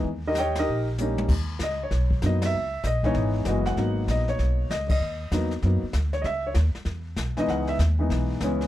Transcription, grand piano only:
X:1
M:4/4
L:1/8
Q:"Swing" 1/4=194
K:G#m
V:1 name="Grand piano"
z [D=GAd] [Gcd=g] [DGAd]2 z3 | z2 d c3 d e- | e2 d c3 d f- | f2 d c3 d [=d^d]- |
[=d^d]2 z4 z c | [de] c z4 z d | f e z6 |]
V:2 name="Grand piano"
z6 [=G,A,CD]2 | z6 [F,A,B,D]2 | z3 [E,G,B,D]3 [E,G,B,F]2 | [F,A,B,D]4- [F,A,B,D] z3 |
z2 [F,A,B,D] z [F,A,B,D] z3 | z6 z [E,G,B,D]- | [E,G,B,D]2 z [E,G,B,D]3 [E,G,B,C]2 |]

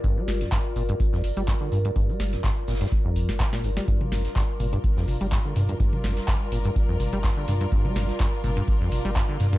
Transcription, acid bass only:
X:1
M:4/4
L:1/16
Q:"Swing 16ths" 1/4=125
K:Gm
V:1 name="Acid bass" clef=bass
G,, G,2 F,, G,, z B,, G,, z F,, z G, G,, D, G,, G,, | G,, G,2 F,, G,, z B,, G,, z F,,2 A,, B,, B,, G,, G, | G,, G, F,, z G,, z B,, G,, z F,, z G, G,, D, G,, G,, | G,, G, F,, z G,, z B,, G,, z F,, z G, G,, D, G,, G,, |
G,, G, F,, z G,, z B,, G,, z F,, z G, G,, D, G,, G,, |]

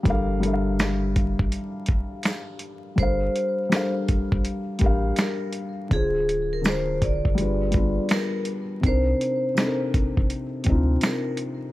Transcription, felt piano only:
X:1
M:4/4
L:1/16
Q:"Swing 16ths" 1/4=82
K:Cdor
V:1 name="Felt piano"
[G,DABf]2 [G,DAB=ef]6 z8 | [K:Gm] [G,DABf]3 z [G,DABf]4 z2 [G,DGBf]4 z2 | [D,DF_Ac]3 z [D,DFAB]4 [G,DFA=B]2 [G,=B,DFA]4 z2 | [C,CDEB]3 z [C,CDEAB]4 z2 [C,CDEF]4 z2 |]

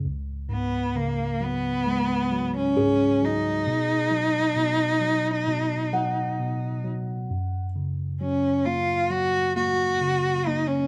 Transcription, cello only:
X:1
M:4/4
L:1/16
Q:1/4=66
K:F#
V:1 name="Cello"
z2 B,2 A,2 B,4- B, C3 D2- | D12- D2 z2 | z4 C2 E2 F2 F4 D C |]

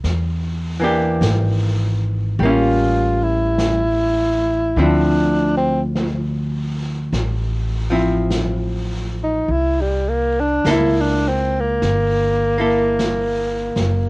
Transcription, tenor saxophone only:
X:1
M:4/4
L:1/16
Q:"Swing" 1/4=51
K:C
V:1 name="Tenor saxophone"
z8 F2 E6 | D2 C2 z8 z3 _E | E G, _B, D E D C B,8- B, |]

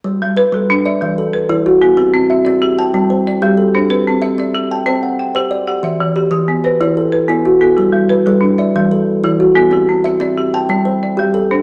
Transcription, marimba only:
X:1
M:12/8
L:1/8
Q:3/8=124
K:G
V:1 name="Marimba"
z2 B A2 e3 B3 A | G2 e d2 a3 d3 c | B2 e d2 a3 g3 f | e2 G F2 c3 B3 A |
G2 B A2 e3 z3 A | G2 e d2 a3 d3 c |]
V:2 name="Marimba"
z G,2 z D2 G, z2 E,2 B,- | B, C2 z G2 C z2 G,2 D- | D C2 z G2 C2 z G2 G- | G E,2 z B,2 E,2 z B,2 B,- |
B, G,2 z D2 G, z2 E,2 B,- | B, C2 z G2 C z2 G,2 D |]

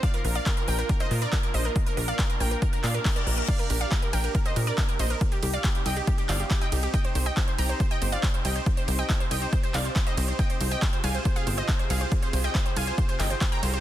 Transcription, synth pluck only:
X:1
M:4/4
L:1/16
Q:1/4=139
K:Fdor
V:1 name="Synth pluck"
[df] B B [df] B B [Bg] B B [ce] B [Bd] B B [ce] B | z B B [df] B B [Bg] B B B [df] B B [Bd] B B | [df] B B [df] B B [Bg] B B [ce] B [Bd] B B [ce] B | z G G [df] G G [eg] G G G [df] G G [eg] G G |
[eg] c c [eg] c c [gb] c c [eg] c [df] c c [eg] c | z c c [eg] c c [eg] c c c [df] c c [ce] c c | [eg] c c [eg] c c [fa] c c [Af] c [ce] c c [Af] c | z c c [eg] c c [fa] c c c [eg] c c [gb] c c |]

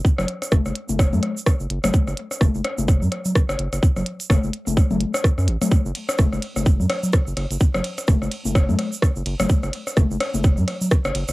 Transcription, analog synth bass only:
X:1
M:4/4
L:1/16
Q:"Swing 16ths" 1/4=127
K:F#m
V:1 name="Analog synth bass" clef=bass
z F,,, z2 F,,, F,,, z F,,,2 F,, z3 F,,, F,,, F,,, | z F,,, z2 F,,, F,,, z F,,,2 F,, z3 F,,, F,,, F,,, | z F,,, z2 F,,, F,,, z F,,, z F,,, z3 F,, A,,, z | z F,,, z2 F,,, F,,, z F,,,2 F,, z3 F,,, F,,, F,,, |
z F,,, z2 F,,, F,,, z F,,,2 F,, z3 F,,, F,,, F,,, | z F,,, z2 F,,, F,,, z F,,,2 F,, z3 F,,, F,,, F,,, |]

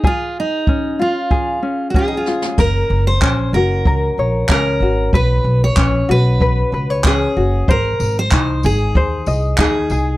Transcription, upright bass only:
X:1
M:4/4
L:1/8
Q:1/4=94
K:Gblyd
V:1 name="Upright bass" clef=bass
z8 | G,,, G,,, B,,, G,,, D,, B,,, D,, A,,, | _C,, C,, B,,, C,,2 D,,2 G,,, | A,,, A,,, C,, A,,, E,, C,, E,, C,, |]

